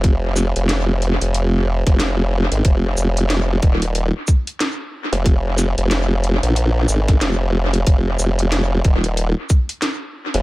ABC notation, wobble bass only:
X:1
M:4/4
L:1/16
Q:"Swing 16ths" 1/4=92
K:Fm
V:1 name="Wobble bass" clef=bass
F,,,3 F,,,4 F,,,4 F,,,4 A,,, | F,,,2 F,,,4 E,,,3 z6 F,,,- | F,,,3 F,,,4 B,,,3 A,,,2 F,,,4 | F,,,2 F,,,4 E,,,3 z6 F,,, |]